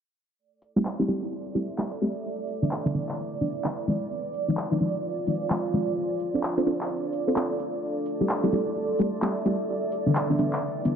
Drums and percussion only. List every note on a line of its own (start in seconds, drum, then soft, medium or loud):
0.62 open hi-hat loud
0.85 clap loud
1.08 open hi-hat loud
1.55 open hi-hat loud
1.78 clap loud
2.01 open hi-hat loud
2.48 open hi-hat medium
2.71 clap loud
2.94 open hi-hat loud
3.09 clap medium
3.41 open hi-hat medium
3.64 clap loud
3.87 open hi-hat medium
4.34 open hi-hat medium
4.57 clap loud
4.80 open hi-hat medium
5.27 open hi-hat medium
5.50 clap loud
5.73 open hi-hat medium
6.20 open hi-hat medium
6.43 clap loud
6.67 open hi-hat medium
6.81 clap medium
7.13 open hi-hat medium
7.36 clap loud
7.59 open hi-hat medium
8.06 open hi-hat medium
8.29 clap loud
8.52 open hi-hat medium
8.99 open hi-hat medium
9.22 clap loud
9.45 open hi-hat medium
9.92 open hi-hat medium
10.15 clap loud
10.39 open hi-hat loud
10.53 clap medium
10.85 open hi-hat medium